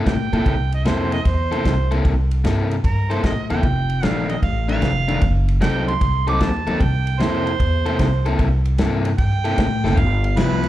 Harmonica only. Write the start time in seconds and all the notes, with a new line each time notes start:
0.07 G5
0.74 D#5
0.88 C5
1.13 D#5
1.26 C5
2.85 A#4
3.11 C5
3.24 D#5
3.50 G5
4.05 F5
4.29 D#5
4.42 F5
4.69 F5
5.62 G5
5.88 C6
6.29 D6
6.42 A5
6.81 G5
7.20 C5
9.19 G5
9.98 F5
10.25 F5
10.38 B4